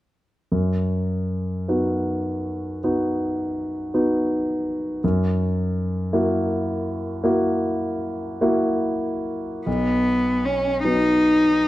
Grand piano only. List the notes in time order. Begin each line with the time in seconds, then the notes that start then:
0.51 F#2
1.68 B3 D#4 F#4
2.84 B3 D#4 F#4
3.94 B3 D#4 F#4
5.04 F#2
6.13 A#3 E4 F#4
7.23 A#3 E4 F#4
8.41 A#3 E4 F#4
9.66 B1
10.85 F#3 B3 D#4